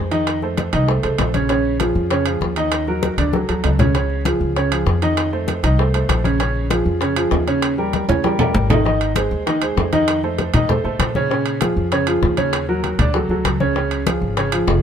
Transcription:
Already playing: F2
0.11 D#3 D#4 D#5, high conga, high timbale
0.27 high bongo, high conga, high timbale
0.42 A3 A4 C5, high bongo, high conga
0.57 high bongo, high conga, high timbale
0.73 C2 D#3 D#4 D#5, high bongo, high conga, high timbale
0.88 A3 A4 C5, high bongo, high conga
1.03 C2 A3 A4 C5, high conga, high timbale
1.18 A#1, high bongo, low bongo, high conga, high timbale, low timbale
1.34 C#3 C#4 C#5, high bongo, high conga, high timbale
1.49 C#3 C#4 C#5, high bongo, high conga, high timbale
1.65 high conga
1.80 F3 F4 G#4, high bongo, high conga, high timbale
1.95 F2, high conga
2.10 C#3 C#4 C#5, high bongo, high conga, high timbale
2.26 F3 F4 G#4, high conga, high timbale
2.41 D#2, high bongo, low bongo, high conga
2.56 D#3 D#4 D#5, high conga, high timbale
2.72 high bongo, high conga, high timbale
2.87 F#3 F#4 A#4, high bongo, high conga
3.03 high bongo, high conga, high timbale
3.18 D2 D3 D4 D5, high conga, high timbale
3.33 F#3 F#4 A4, high bongo, high conga
3.49 D2 F#3 F#4 A4, high timbale
3.64 C#2, low bongo, high timbale, low timbale
3.79 C#3 C#4 C#5, low bongo, low conga, high timbale
3.95 C#3 C#4 C#5, high bongo, high conga, high timbale
4.10 high conga
4.25 F3 F4 G#4, high bongo, high conga, high timbale
4.41 C#2, high conga
4.56 C#3 C#4 C#5, high bongo, high conga, high timbale
4.71 F3 F4 G#4, high conga, high timbale
4.86 F2, high bongo, low bongo, high conga
5.02 D#3 D#4 D#5, high timbale
5.17 high bongo, high conga, high timbale
5.33 A3 A4 C5, high bongo, high conga
5.48 high bongo, high conga, high timbale
5.63 C2 D#3 D#4 D#5, high bongo, high conga, high timbale
5.79 A3 A4 C5, high bongo, high conga
5.94 A3 A4 C5, high timbale
6.09 A#1, high bongo, low bongo, high conga, high timbale
6.24 C#3 C#4 C#5, high bongo, high conga, high timbale
6.40 C#3 C#4 C#5, high bongo, high conga, high timbale
6.56 high conga
6.70 F3 F4 G#4, high bongo, high conga, high timbale
6.85 F2, high conga
7.01 C#3 C#4 C#5, high bongo, high conga, high timbale
7.16 F3 F4 G#4, high conga, high timbale
7.31 D#2, high bongo, low bongo, high conga, low timbale
7.47 C#3 C#4 C#5, high conga, high timbale
7.62 high bongo, high conga, high timbale
7.78 G3 G4 A#4, high bongo, high conga
7.93 high bongo, high conga, high timbale
8.08 D#2 C#3 C#4 C#5, low conga, high timbale
8.24 G3 G4 A#4, high bongo, high conga, high timbale
8.39 G3 G4 A#4, high bongo, low conga, low timbale
8.54 G#1, high bongo, low conga
8.70 D#3 D#4 D#5, low bongo, low conga, low timbale
8.85 D#3 D#4 D#5, high bongo, high conga
9.01 high conga, high timbale
9.16 G#3 G#4 C5, high bongo, high conga, high timbale
9.31 D#2, high conga
9.46 D#3 D#4 D#5, high bongo, high conga, high timbale
9.62 G#3 G#4 C5, high conga, high timbale
9.77 F2, high bongo, low bongo, high conga, low timbale
9.93 D#3 D#4 D#5, high conga, high timbale
10.08 high bongo, high conga, high timbale
10.23 A3 A4 C5, high conga
10.38 high bongo, high conga, high timbale
10.54 A2 D#3 D#4 D#5, high bongo, high conga, low conga, high timbale
10.69 A3 A4 C5, high bongo, high conga, low conga
10.84 A2 A3 A4 C5, high bongo, high conga
10.99 A#2, high bongo, low bongo, high conga, high timbale
11.15 C#3 C#4 C#5, high bongo, high conga
11.30 C#3 C#4 C#5, high bongo, high conga
11.46 high conga, high timbale
11.61 F3 F4 G#4, high bongo, high conga, high timbale
11.76 F2, high conga
11.92 C#3 C#4 C#5, high bongo, high conga, high timbale
12.07 F3 F4 G#4, high conga, high timbale
12.22 D#2, high bongo, low bongo, high conga
12.37 C#3 C#4 C#5, high conga, high timbale
12.53 high bongo, high conga, high timbale
12.69 F#3 F#4 A#4, high conga
12.84 high bongo, high conga, high timbale
12.98 D2 D3 D4 D5, high bongo, high conga, low conga, high timbale
13.14 F#3 F#4 A4, high bongo, high conga
13.29 D2 F#3 F#4 A4, high bongo, high conga
13.44 C#2, high bongo, low bongo, high conga, high timbale
13.60 C#3 C#4 C#5, high bongo, high conga
13.76 C#3 C#4 C#5, high bongo, high conga
13.91 high conga, high timbale
14.07 F3 F4 G#4, high bongo, high conga, high timbale
14.21 G#1, high conga
14.37 C#3 C#4 C#5, high bongo, high conga, high timbale
14.52 F3 F4 G#4, high conga, high timbale
14.67 F1, high bongo, low bongo, high conga, low timbale

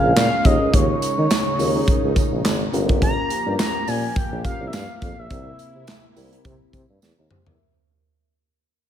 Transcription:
Already playing: C#3 G#3 C#4 F4 G#4 A#4 F5
0.04 A#1
0.16 A#2 F5, snare, clap, closed hi-hat, tambourine
0.45 D#2 C#3 C#4 D#4 F4 G#4 A#4 D#5, kick, closed hi-hat, tambourine
0.61 C#2
0.73 D#2 C#5, kick, closed hi-hat, tambourine
1.02 closed hi-hat, tambourine
1.18 D#3
1.30 snare, clap, closed hi-hat, tambourine
1.59 D#2 C#4 F4 G#4 A#4, open hi-hat, tambourine
1.75 C#4 F4 G#4 A#4
1.88 kick, closed hi-hat, tambourine
2.04 C#2
2.16 kick, closed hi-hat, tambourine
2.32 A#1
2.45 G#1, snare, clap, closed hi-hat, tambourine
2.73 G1 F3 A#3 C#4 F4 G4 A#4, closed hi-hat, tambourine
2.89 kick, closed hi-hat
3.02 A#5, kick, closed hi-hat
3.30 closed hi-hat, tambourine
3.46 G2 C#4 F4 G4 A#4
3.59 A#5, snare, clap, closed hi-hat, tambourine
3.87 A#2 G#5, open hi-hat, tambourine
4.16 G5, kick, closed hi-hat, tambourine
4.32 A#1
4.44 C#4 F4 G4 A4 F5, kick, closed hi-hat, tambourine
4.52 A#4
4.61 C2
4.68 E5
4.73 G2 F5, snare, clap, closed hi-hat, tambourine
5.02 F2 F5, kick, closed hi-hat, tambourine
5.18 A#1 E5
5.30 C2 C3 C4 E4 G4 A#4, kick, closed hi-hat, tambourine
5.59 closed hi-hat, tambourine
5.75 C3
5.87 snare, clap, closed hi-hat, tambourine
6.16 C2 C4 E4 G4 A#4, open hi-hat, tambourine
6.32 C4 E4 G4 A#4, closed hi-hat
6.44 C3, kick, closed hi-hat, tambourine
6.73 C3, kick, closed hi-hat, tambourine
6.89 G2
7.02 E2, snare, tambourine
7.18 D#2 E4 A#4
7.31 G4 C5, mid tom
7.46 E2 A#4 E5, floor tom

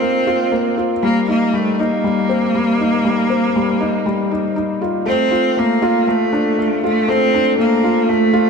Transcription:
Already playing: C4 D#4 F4
0.00 A#3
0.27 F4
0.52 A#3
0.78 F4
1.03 G3 A#3
1.28 A#3 D#4
1.53 G3 A3
1.79 A#3 D#4
2.04 G3
2.29 C4
2.55 G3
2.80 D#4
3.04 G3
3.30 C4
3.56 G3
3.80 D#4
4.06 G3
4.31 D#4
4.56 D#4
4.82 F4
5.06 A3 C4
5.31 F4
5.57 A3 A#3
5.82 F4
6.08 A3
6.33 D4
6.59 A3
6.84 A3 F4
7.08 A3 C4
7.34 D4
7.58 A3 A#3
7.84 F4
8.09 A3
8.34 F4

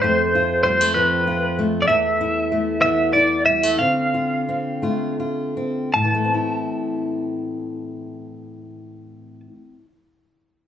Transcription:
0.02 F2 A3 C5
0.35 F4
0.63 G3 C5
0.81 A3
0.94 F3 C4 B4
1.27 F4
1.59 A3
1.82 D5
1.88 E2 A3 E5
2.21 E4
2.52 A3
2.82 E3 B3 E5
3.13 E4 D5
3.46 G3 E5
3.63 A3
3.79 D3 C4 F5
4.14 F4
4.49 C4
4.82 A3 F4
5.20 F4
5.57 C4
5.94 A2 A5
6.04 E3
6.14 A3
6.24 C4
6.34 E4

